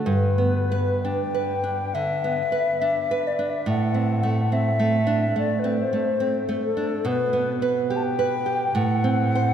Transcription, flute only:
0.05 1.03 B4 medium
1.03 1.96 G5 medium
1.94 3.29 E5 medium
3.27 3.51 D5 medium
3.50 3.69 E5 medium
3.69 4.54 F#5 medium
4.53 5.37 E5 medium
5.38 5.61 D5 medium
5.59 5.79 B4 medium
5.80 6.36 C5 medium
6.65 7.08 A4 medium
7.07 7.63 B4 medium
7.90 7.98 G5 medium
7.96 8.05 A5 medium
8.03 8.77 G5 loud
8.76 9.54 F#5 loud

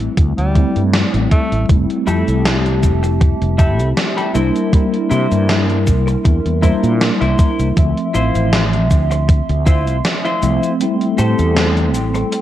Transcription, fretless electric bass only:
0.17 0.32 D2 medium
0.38 0.64 D2 medium
0.76 1.02 G2 medium
1.14 1.26 A1 medium
1.52 1.64 A1 medium
1.69 1.84 F1 medium
2.07 2.22 F2 medium
2.28 2.85 C2 loud
2.83 3.32 F1 medium
3.42 3.80 F1 loud
3.80 3.92 C2 medium
4.35 4.50 C2 medium
5.11 5.26 C3 medium
5.31 5.88 G2 loud
5.87 6.15 C2 medium
6.25 6.39 E2 medium
6.45 6.71 E2 medium
6.83 7.09 A#2 medium
7.21 7.34 C2 medium
7.59 7.72 C2 medium
7.77 7.91 D2 loud
8.15 8.29 A1 medium
8.35 8.91 A1 loud
8.91 9.40 D2 medium
9.49 9.87 D2 loud
9.87 10.00 C2 medium
10.43 10.57 C2 medium
11.19 11.33 A2 medium
11.39 11.95 E2 loud
11.95 12.22 A1 medium

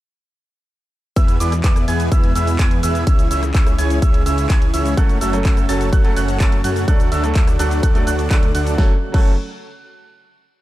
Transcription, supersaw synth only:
1.16 1.37 B3 loud
1.16 1.37 E4 medium
1.16 1.37 G#4 medium
1.16 1.37 B4 medium
1.16 1.37 E5 loud
1.40 1.53 B3 medium
1.40 1.53 E4 medium
1.40 1.53 G#4 medium
1.40 1.53 B4 medium
1.40 1.53 D5 medium
1.64 1.85 B3 medium
1.64 1.85 E4 medium
1.64 1.85 G#4 medium
1.64 1.85 B4 medium
1.64 1.85 D5 medium
1.88 2.09 B3 medium
1.88 2.09 E4 medium
1.88 2.09 G#4 medium
1.88 2.09 B4 medium
1.88 2.09 G#5 medium
2.12 2.33 B3 medium
2.12 2.33 E4 medium
2.12 2.33 G#4 medium
2.12 2.33 B4 medium
2.12 2.33 E5 loud
2.36 2.57 B3 medium
2.36 2.57 E4 medium
2.36 2.57 G#4 medium
2.36 2.56 B4 medium
2.36 2.57 E5 loud
2.59 2.80 B3 medium
2.59 2.80 E4 medium
2.59 2.80 G#4 medium
2.59 2.80 B4 medium
2.59 2.80 G#5 loud
2.83 3.04 B3 medium
2.83 3.04 E4 medium
2.83 3.04 G#4 medium
2.83 3.04 B4 medium
2.83 3.04 E5 medium
3.07 3.28 C#4 loud
3.07 3.28 E4 medium
3.07 3.28 G#4 medium
3.07 3.28 C#5 medium
3.07 3.28 E5 loud
3.31 3.43 C#4 medium
3.31 3.43 E4 medium
3.31 3.43 G#4 medium
3.31 3.43 C#5 medium
3.31 3.43 E5 medium
3.55 3.76 C#4 medium
3.55 3.76 E4 medium
3.55 3.76 G#4 medium
3.55 3.76 C#5 medium
3.55 3.76 E5 medium
3.78 3.99 C#4 medium
3.78 3.99 E4 medium
3.78 3.99 G#4 medium
3.78 3.99 C#5 medium
3.78 3.99 G#5 medium
4.02 4.23 C#4 medium
4.02 4.23 E4 medium
4.02 4.23 G#4 medium
4.02 4.23 C#5 medium
4.02 4.23 E5 loud
4.26 4.47 C#4 medium
4.26 4.47 E4 medium
4.26 4.47 G#4 medium
4.26 4.47 C#5 medium
4.26 4.47 E5 loud
4.50 4.71 C#4 medium
4.50 4.71 E4 medium
4.50 4.71 G#4 medium
4.50 4.71 C#5 medium
4.50 4.71 G#5 loud
4.74 4.95 C#4 medium
4.74 4.95 E4 medium
4.74 4.95 G#4 medium
4.74 4.95 C#5 medium
4.74 4.95 E5 medium
4.97 5.18 C#4 loud
4.97 5.18 F#4 loud
4.97 5.18 A4 medium
4.97 5.18 C#5 medium
4.97 5.18 F#5 loud
5.21 5.34 C#4 medium
5.21 5.34 F#4 medium
5.21 5.34 A4 medium
5.21 5.34 C#5 medium
5.21 5.34 E5 medium
5.45 5.66 C#4 medium
5.45 5.66 F#4 medium
5.45 5.66 A4 medium
5.45 5.66 C#5 medium
5.45 5.66 E5 medium
5.69 5.90 C#4 medium
5.69 5.90 F#4 medium
5.69 5.90 A4 medium
5.69 5.90 C#5 medium
5.69 5.90 A5 medium
5.93 6.14 C#4 medium
5.93 6.14 F#4 medium
5.93 6.14 A4 medium
5.93 6.14 C#5 medium
5.93 6.14 F#5 loud
6.17 6.38 C#4 medium
6.17 6.38 F#4 medium
6.17 6.37 A4 medium
6.17 6.38 C#5 medium
6.17 6.38 F#5 loud
6.40 6.61 C#4 medium
6.40 6.61 F#4 medium
6.40 6.61 A4 medium
6.40 6.61 C#5 medium
6.40 6.61 A5 loud
6.64 6.85 C#4 medium
6.64 6.85 F#4 medium
6.64 6.85 A4 medium
6.64 6.85 C#5 medium
6.64 6.85 F#5 medium
6.88 7.09 D4 loud
6.88 7.09 F#4 medium
6.88 7.09 A4 medium
6.88 7.09 D5 medium
6.88 7.09 F#5 loud
7.12 7.24 D4 medium
7.12 7.24 F#4 medium
7.12 7.24 A4 medium
7.12 7.24 D5 medium
7.12 7.24 E5 loud
7.36 7.57 D4 medium
7.36 7.57 F#4 medium
7.36 7.57 A4 medium
7.36 7.57 D5 medium
7.36 7.57 E5 medium
7.59 7.80 D4 medium
7.59 7.80 F#4 medium
7.59 7.80 A4 medium
7.59 7.80 D5 medium
7.59 7.80 F#5 medium
7.83 8.04 D4 medium
7.83 8.04 F#4 medium
7.83 8.04 A4 medium
7.83 8.04 D5 medium
7.83 8.04 F#5 loud
8.07 8.28 D4 medium
8.07 8.28 F#4 medium
8.07 8.28 A4 medium
8.07 8.28 D5 medium
8.07 8.28 F#5 loud
8.31 8.52 D4 medium
8.31 8.52 F#4 medium
8.31 8.52 A4 medium
8.31 8.52 D5 medium
8.31 8.52 F#5 loud
8.55 8.76 D4 medium
8.55 8.76 F#4 medium
8.55 8.76 A4 medium
8.55 8.76 D5 medium
8.55 8.76 F#5 medium
8.78 8.92 C#4 medium
8.78 8.92 F#4 medium
8.78 8.92 A4 medium
8.78 8.92 C#5 medium
8.78 8.92 F#5 medium
9.14 9.32 C#4 medium
9.14 9.32 F#4 medium
9.14 9.32 A4 medium
9.14 9.32 C#5 medium
9.14 9.32 F#5 loud

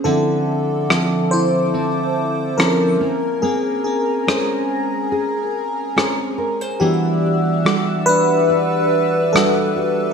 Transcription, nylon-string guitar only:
0.00 0.14 C#4 medium
0.00 0.14 G#4 medium
0.00 0.90 C5 medium
0.05 3.10 D3 medium
0.89 2.58 F3 medium
0.89 1.73 C4 medium
0.89 2.58 E4 medium
1.74 2.58 C4 medium
2.58 3.00 F3 medium
2.58 3.46 C4 medium
2.58 3.10 E4 medium
3.01 3.42 A#3 medium
3.43 6.81 A#3 medium
4.27 5.95 C#4 medium
4.27 5.11 G#4 medium
4.27 5.96 C5 medium
5.12 5.96 G#4 medium
5.96 6.90 C#4 medium
5.96 6.90 G#4 medium
5.96 6.38 C5 medium
6.38 6.61 A#4 medium
6.61 6.90 C5 medium
6.80 10.13 E3 medium
7.65 9.32 G3 medium
7.65 8.48 D4 medium
7.65 9.34 F#4 medium
8.50 9.33 D4 medium
9.34 10.13 G3 medium
9.34 10.13 D4 medium
9.34 9.76 F#4 medium
9.76 10.13 F#4 medium

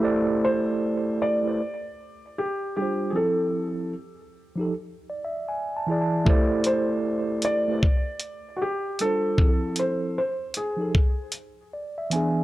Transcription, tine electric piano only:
0.00 1.07 A3 loud
0.00 1.07 E4 medium
0.00 1.08 G4 medium
0.00 1.08 A4 medium
0.00 1.09 C5 medium
0.04 1.09 D5 loud
1.43 1.58 A3 medium
1.43 1.59 E4 medium
1.43 1.60 G4 medium
1.43 1.60 B4 medium
1.47 1.61 C5 medium
1.47 1.61 D5 medium
2.77 3.15 G3 medium
2.77 3.16 D4 medium
2.77 3.17 F4 medium
2.82 3.18 C5 medium
3.12 3.80 F3 medium
3.12 3.81 C4 medium
3.12 3.82 E4 medium
3.17 3.83 A4 medium
4.56 4.71 F3 medium
4.56 4.72 D#4 medium
4.56 4.72 G4 medium
4.61 4.73 A4 medium
5.10 5.22 D5 medium
5.25 5.48 E5 medium
5.49 5.73 G#5 medium
5.77 6.00 A5 medium
5.87 6.19 E3 medium
5.87 6.20 E4 medium
5.87 6.21 G#4 medium
5.92 6.21 D5 medium
6.01 6.25 A5 medium
6.25 7.31 A3 loud
6.25 7.31 E4 loud
6.25 7.32 G4 medium
6.25 7.32 A4 medium
6.25 7.33 C5 loud
6.30 7.33 D5 loud
7.68 7.83 A3 medium
7.68 7.83 E4 medium
7.68 7.84 G4 medium
7.68 7.84 B4 medium
7.72 7.85 C5 medium
7.72 7.85 D5 medium
9.00 9.39 G3 medium
9.00 9.40 D4 medium
9.00 9.41 F4 medium
9.05 9.42 C5 medium
9.37 10.04 F3 medium
9.37 10.05 C4 medium
9.37 10.06 E4 medium
9.42 9.49 G#4 medium
9.49 10.10 A4 medium
10.76 10.93 F3 medium
10.76 10.93 D#4 medium
10.76 10.94 G4 medium
10.81 10.95 A4 medium
11.73 11.96 D5 medium
11.98 12.11 E5 medium
12.10 12.42 E3 medium
12.10 12.43 B3 medium
12.10 12.44 D4 medium
12.10 12.44 G#5 medium
12.15 12.44 G#4 medium

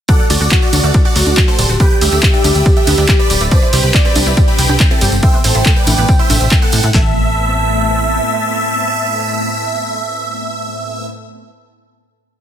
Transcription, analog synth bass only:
0.30 0.37 D2 loud
0.41 0.48 D2 medium
0.73 0.80 D2 medium
0.84 0.90 D2 medium
1.16 1.23 D2 loud
1.26 1.33 D2 medium
1.59 1.65 D1 loud
1.69 1.76 D1 medium
2.01 2.08 D2 loud
2.12 2.19 D2 medium
2.44 2.51 D2 loud
2.55 2.62 D2 medium
2.87 2.94 D2 loud
2.98 3.05 D2 medium
3.30 3.37 D1 loud
3.41 3.48 D1 medium
3.73 3.80 C2 loud
3.84 3.90 C2 medium
4.16 4.23 C2 medium
4.26 4.33 C2 medium
4.59 4.65 C2 loud
4.69 4.76 C2 medium
5.01 5.08 G1 loud
5.12 5.19 G1 medium
5.44 5.51 A1 loud
5.55 5.62 A1 medium
5.87 5.94 A1 loud
5.98 6.05 A1 medium
6.30 6.37 A1 loud
6.41 6.48 A1 medium
6.73 6.80 A2 loud
6.84 6.90 A2 medium
6.94 8.19 A1 loud

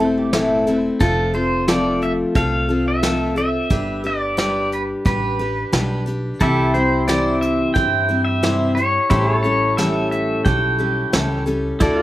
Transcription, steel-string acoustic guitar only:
0.00 0.32 A3 soft
0.00 0.32 C4 soft
0.00 0.33 E4 medium
0.00 0.33 A4 medium
0.33 0.67 A2 medium
0.33 0.67 E3 medium
0.33 0.67 A3 medium
0.33 0.67 C4 medium
0.33 0.66 E4 medium
0.33 0.66 A4 medium
0.67 0.99 A3 soft
0.67 1.00 C4 soft
0.67 1.01 E4 soft
0.67 1.00 A4 soft
1.00 1.34 F3 medium
1.00 1.34 A3 medium
1.00 1.34 C4 medium
1.00 1.33 F4 medium
1.00 1.32 A4 medium
1.34 1.67 C4 soft
1.34 1.68 F4 soft
1.34 1.68 A4 medium
1.68 2.36 F3 medium
1.68 2.34 A3 medium
1.68 2.34 C4 medium
1.68 2.35 F4 medium
1.68 2.36 A4 medium
2.35 2.69 A3 medium
2.35 2.69 C4 medium
2.35 2.69 F4 medium
2.35 2.68 A4 medium
2.69 3.02 C4 soft
2.69 3.03 F4 soft
2.69 3.03 A4 soft
3.03 3.37 F3 medium
3.03 3.37 A3 medium
3.03 3.37 C4 medium
3.03 3.36 F4 medium
3.03 3.35 A4 medium
3.36 3.70 C4 soft
3.36 3.71 F4 soft
3.36 3.70 A4 soft
3.70 4.04 G3 medium
3.70 4.04 D4 medium
3.70 4.03 G4 medium
3.70 4.02 B4 medium
4.04 4.37 D4 soft
4.04 4.37 G4 soft
4.04 4.37 B4 medium
4.37 5.04 G3 medium
4.37 5.04 D4 medium
4.37 5.06 G4 medium
4.37 5.06 B4 medium
5.05 5.39 G3 medium
5.05 5.39 D4 medium
5.05 5.39 G4 medium
5.05 5.38 B4 medium
5.39 5.72 D4 soft
5.39 5.72 G4 soft
5.39 5.72 B4 medium
5.72 6.07 G3 medium
5.72 6.07 D4 medium
5.72 6.06 G4 medium
5.72 6.05 B4 medium
6.06 6.41 D4 soft
6.06 6.41 G4 soft
6.06 6.40 B4 medium
6.40 6.74 C3 medium
6.40 6.74 E3 medium
6.40 6.75 G3 medium
6.40 6.74 C4 medium
6.40 6.74 E4 medium
6.40 6.73 C5 medium
6.74 7.07 G3 soft
6.74 7.07 C4 soft
6.74 7.08 E4 medium
6.74 7.08 C5 medium
7.08 7.76 C3 medium
7.08 8.43 E3 medium
7.08 7.74 G3 medium
7.08 7.74 C4 medium
7.08 7.76 E4 medium
7.08 7.76 C5 medium
7.75 8.09 G3 medium
7.75 8.09 C4 medium
7.75 8.08 E4 medium
7.75 8.07 C5 medium
8.09 8.42 G3 soft
8.09 8.42 C4 soft
8.09 8.43 E4 soft
8.09 8.43 C5 soft
8.43 8.77 C3 medium
8.43 8.77 E3 medium
8.43 8.77 G3 medium
8.43 8.77 C4 medium
8.43 8.76 E4 medium
8.43 8.77 C5 medium
8.77 9.09 G3 soft
8.77 9.11 E4 soft
9.10 9.44 A2 medium
9.10 9.44 E3 medium
9.10 9.45 G3 medium
9.10 9.44 C#4 medium
9.10 9.43 G4 medium
9.10 9.43 A4 medium
9.44 9.78 G3 soft
9.44 9.77 C#4 soft
9.44 9.78 G4 soft
9.44 9.78 A4 medium
9.78 10.46 A2 medium
9.78 10.46 E3 medium
9.78 10.44 G3 medium
9.78 10.45 C#4 medium
9.78 10.45 G4 medium
9.78 10.47 A4 medium
10.45 10.79 G3 medium
10.45 10.79 C#4 medium
10.45 10.78 G4 medium
10.45 10.77 A4 medium
10.79 11.12 G3 soft
10.79 11.12 C#4 soft
10.79 11.12 G4 soft
10.79 11.13 A4 soft
11.13 11.47 A2 medium
11.13 11.47 E3 medium
11.13 11.46 G3 medium
11.13 11.46 C#4 medium
11.13 11.45 G4 medium
11.13 11.45 A4 medium
11.46 11.80 G3 soft
11.46 11.80 C#4 medium
11.46 11.81 G4 soft
11.46 11.80 A4 soft
11.80 12.02 D3 medium
11.80 12.02 A3 medium
11.80 12.02 D4 medium
11.80 12.02 F#4 medium
11.80 12.02 A4 medium

